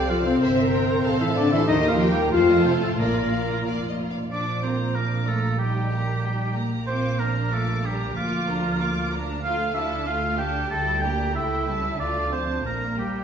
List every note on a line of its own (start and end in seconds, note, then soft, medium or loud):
0.00 0.31 C2 medium
0.00 1.63 C4 medium
0.00 0.37 A4 medium
0.00 0.37 D5 medium
0.00 0.11 G5 medium
0.09 0.25 F3 medium
0.09 0.25 F4 medium
0.09 0.27 F4 medium
0.09 0.25 C5 soft
0.09 0.25 F5 medium
0.24 1.20 C3 medium
0.24 1.20 C4 medium
0.24 1.18 C5 medium
0.24 1.19 C5 medium
0.24 0.41 F5 medium
0.41 0.94 G1 medium
0.41 1.03 A#4 medium
0.41 0.56 C5 medium
0.41 0.73 C5 medium
0.41 0.56 E5 medium
0.58 0.73 E5 medium
0.72 1.04 A#4 medium
0.72 0.89 G5 medium
0.89 1.05 A#5 medium
1.04 1.57 A1 medium
1.04 1.68 A4 medium
1.04 1.20 C5 medium
1.04 1.20 F5 medium
1.20 1.27 E3 medium
1.20 1.36 E4 medium
1.20 1.28 E4 medium
1.20 1.36 E5 medium
1.20 1.36 F5 medium
1.35 1.52 D3 medium
1.35 1.43 D4 medium
1.35 1.52 D4 loud
1.35 1.41 D5 medium
1.35 1.52 D5 medium
1.35 1.53 A5 medium
1.51 1.68 E3 medium
1.51 1.67 E4 medium
1.51 1.60 E4 medium
1.51 1.58 E5 medium
1.51 1.67 E5 medium
1.51 1.69 C6 medium
1.67 2.22 D#2 medium
1.67 1.76 D#3 medium
1.67 2.31 A#3 medium
1.67 1.77 D#4 medium
1.67 1.78 D#4 medium
1.67 2.31 G4 medium
1.67 2.33 A#4 medium
1.67 1.83 C5 medium
1.67 1.87 D#5 medium
1.67 1.89 D#5 medium
1.67 1.84 D#5 medium
1.85 2.09 F4 medium
1.85 2.01 D#5 medium
1.85 1.98 F5 medium
1.85 2.11 F5 medium
1.90 2.11 F3 medium
1.90 2.00 F4 medium
2.01 2.17 G5 medium
2.10 2.20 G3 medium
2.10 2.31 G4 medium
2.10 2.33 G4 loud
2.10 2.32 G5 medium
2.10 2.21 G5 medium
2.17 2.33 A#5 medium
2.32 2.88 F2 medium
2.32 2.65 F3 medium
2.32 2.99 A3 medium
2.32 2.66 F4 medium
2.32 4.07 F4 medium
2.32 2.65 F4 medium
2.32 2.98 A4 medium
2.32 2.48 C5 medium
2.32 2.64 F5 medium
2.32 2.65 F5 medium
2.50 2.66 D#5 medium
2.65 2.73 C3 medium
2.65 2.81 C4 medium
2.65 2.74 C4 medium
2.65 2.81 C5 medium
2.65 2.73 C5 medium
2.65 2.82 F5 soft
2.82 2.98 A2 medium
2.82 3.00 A3 medium
2.82 2.99 A3 medium
2.82 2.98 A4 soft
2.82 2.90 A4 soft
2.82 2.99 A5 soft
2.98 3.54 A#1 medium
2.98 3.95 A#2 medium
2.98 3.66 A#2 soft
2.98 3.65 A#3 medium
2.98 4.09 A#3 soft
2.98 3.66 A#3 medium
2.98 3.64 A#4 medium
2.98 3.15 A#4 medium
2.98 3.58 D5 soft
2.98 3.15 D5 soft
3.16 3.33 D5 soft
3.33 3.49 F5 soft
3.49 3.66 A#5 soft
3.64 4.20 F1 soft
3.64 3.86 D5 soft
3.64 3.82 F5 soft
3.83 3.99 D5 soft
3.88 3.96 D#5 soft
3.99 4.15 A#4 soft
4.10 4.18 F5 soft
4.15 4.31 D5 soft
4.30 6.84 A#1 soft
4.30 4.61 F3 soft
4.30 4.61 D4 soft
4.30 4.61 D4 medium
4.30 4.61 D5 medium
4.30 4.61 D6 soft
4.62 4.95 A#3 soft
4.62 4.95 C4 soft
4.62 4.95 F4 soft
4.62 4.97 C5 medium
4.62 4.95 A#5 soft
4.95 5.27 F3 soft
4.95 5.28 A#3 soft
4.95 5.28 D4 soft
4.95 5.29 A#4 medium
4.95 5.27 D6 soft
5.27 5.59 A3 soft
5.27 5.59 A#3 soft
5.27 5.60 F4 soft
5.27 5.58 A4 medium
5.27 5.60 A#5 soft
5.59 5.90 G3 soft
5.59 6.55 G3 soft
5.59 5.90 D#4 soft
5.59 6.54 G4 medium
5.59 5.89 G5 soft
5.91 6.24 A#3 soft
5.91 6.24 G4 soft
5.91 6.24 A#5 soft
6.23 6.56 G3 soft
6.23 6.56 D#4 soft
6.23 6.56 G5 soft
6.55 6.86 A#3 soft
6.55 6.88 G4 soft
6.55 6.88 A#5 soft
6.87 8.13 A#1 soft
6.87 7.18 A#3 soft
6.87 7.18 C4 medium
6.87 7.18 F4 soft
6.87 7.21 C5 medium
6.87 7.17 D6 soft
7.19 7.52 A#3 soft
7.19 7.52 D4 soft
7.19 7.54 A#4 medium
7.19 7.52 A#4 soft
7.19 7.52 A#5 soft
7.51 7.84 A3 soft
7.51 7.84 A#3 soft
7.51 7.84 F4 soft
7.51 7.87 A4 medium
7.51 7.84 D6 soft
7.83 8.15 G3 medium
7.83 8.16 D4 soft
7.83 8.16 G4 medium
7.83 8.16 A#4 soft
7.83 8.16 A#5 soft
8.15 10.66 D2 medium
8.15 9.10 F3 medium
8.15 8.45 A#3 soft
8.15 8.46 F4 medium
8.15 9.10 F4 medium
8.15 8.45 D6 soft
8.48 8.80 D4 soft
8.48 8.80 A#4 soft
8.48 8.80 A#5 soft
8.79 9.12 A#3 soft
8.79 9.12 F4 soft
8.79 9.12 D6 soft
9.12 9.44 D4 soft
9.12 9.44 A#4 soft
9.12 9.44 A#5 soft
9.43 9.73 A3 medium
9.43 9.73 F4 medium
9.43 9.74 F4 soft
9.43 9.76 F5 medium
9.43 9.73 F5 soft
9.74 10.07 D4 soft
9.74 10.07 E4 medium
9.74 10.07 A4 soft
9.74 10.06 E5 medium
9.74 10.07 A5 soft
10.06 10.39 A3 soft
10.06 10.39 F4 soft
10.06 10.39 F4 medium
10.06 10.38 F5 soft
10.06 10.38 F5 medium
10.38 10.71 D4 soft
10.38 10.71 G4 medium
10.38 10.71 A4 soft
10.38 10.70 G5 medium
10.38 10.70 A5 soft
10.70 11.33 D2 medium
10.70 11.01 G3 soft
10.70 11.01 E4 soft
10.70 11.03 A4 medium
10.70 11.01 G5 soft
10.70 11.03 A5 medium
11.02 11.35 A#3 soft
11.02 11.35 D4 soft
11.02 11.34 G4 medium
11.02 11.35 G5 medium
11.02 11.35 A#5 soft
11.35 11.99 C#2 soft
11.35 11.65 A3 soft
11.35 11.99 E4 medium
11.35 11.66 E4 soft
11.35 11.98 E5 medium
11.35 11.65 G5 soft
11.67 11.99 G3 soft
11.67 12.00 C#4 soft
11.67 12.00 A5 soft
11.99 12.62 D2 soft
11.99 12.30 D3 soft
11.99 12.31 D4 medium
11.99 12.30 F4 soft
11.99 12.31 D5 medium
11.99 12.30 F5 soft
12.31 12.64 F3 soft
12.31 12.63 C4 soft
12.31 12.64 D4 soft
12.31 12.64 C5 medium
12.31 12.64 A5 soft
12.63 13.24 A#1 soft
12.63 12.97 A#3 soft
12.63 12.94 A#3 soft
12.63 12.95 D4 soft
12.63 12.97 A#4 medium
12.63 12.94 A#5 soft
12.96 13.24 G3 soft
12.96 13.24 A#3 soft
12.96 13.24 G4 soft
12.96 13.24 G5 soft